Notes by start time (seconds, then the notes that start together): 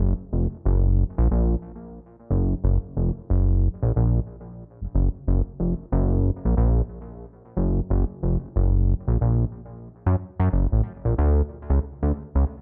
0.00 F#1
0.33 F1
0.66 F#1
1.18 A#1
1.31 A#1
2.31 F#1
2.64 F#1
2.97 F1
3.30 F#1
3.83 A#1
3.96 A#1
4.81 F#1
4.95 F#1
5.28 F#1
5.60 F1
5.92 F#1
6.45 A#1
6.57 A#1
7.57 F#1
7.90 F#1
8.23 F1
8.56 F#1
9.08 A#1
9.21 A#1
10.06 F#2
10.40 F#2
10.53 F#1
10.72 A1
11.05 A#1
11.18 D2
11.70 C#2
12.03 D2
12.35 C#2